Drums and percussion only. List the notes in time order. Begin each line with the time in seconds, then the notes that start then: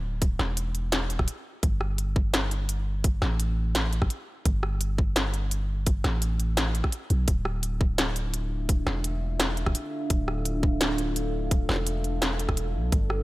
0.22 kick, closed hi-hat
0.39 cross-stick, snare
0.57 closed hi-hat
0.75 closed hi-hat
0.92 cross-stick, snare, closed hi-hat
1.10 closed hi-hat
1.19 kick, cross-stick
1.28 closed hi-hat
1.63 kick, closed hi-hat
1.81 cross-stick
1.98 closed hi-hat
2.16 kick
2.34 snare, closed hi-hat
2.51 closed hi-hat
2.69 closed hi-hat
3.04 kick, closed hi-hat
3.22 cross-stick, snare
3.40 closed hi-hat
3.75 cross-stick, snare, closed hi-hat
3.93 closed hi-hat
4.02 kick, cross-stick
4.10 closed hi-hat
4.45 kick, closed hi-hat
4.63 cross-stick
4.81 closed hi-hat
4.98 kick
5.16 snare, closed hi-hat
5.34 closed hi-hat
5.51 closed hi-hat
5.87 kick, closed hi-hat
6.04 cross-stick, snare, closed hi-hat
6.22 closed hi-hat
6.40 closed hi-hat
6.57 cross-stick, snare, closed hi-hat
6.75 closed hi-hat
6.84 kick, cross-stick
6.92 closed hi-hat
7.10 closed hi-hat
7.28 kick, closed hi-hat
7.45 cross-stick
7.63 closed hi-hat
7.81 kick
7.98 snare, closed hi-hat
8.16 closed hi-hat
8.34 closed hi-hat
8.69 kick, closed hi-hat
8.87 cross-stick, snare
9.04 closed hi-hat
9.40 cross-stick, snare, closed hi-hat
9.57 closed hi-hat
9.66 kick, cross-stick
9.75 closed hi-hat
10.10 kick, closed hi-hat
10.28 cross-stick
10.45 closed hi-hat
10.63 kick
10.81 snare, closed hi-hat
10.98 closed hi-hat
11.16 closed hi-hat
11.51 kick, closed hi-hat
11.69 cross-stick, snare
11.71 snare
11.74 snare
11.76 snare
11.87 closed hi-hat
12.04 closed hi-hat
12.22 cross-stick, snare, closed hi-hat
12.39 closed hi-hat
12.49 kick, cross-stick
12.57 closed hi-hat
12.92 kick, closed hi-hat
13.10 cross-stick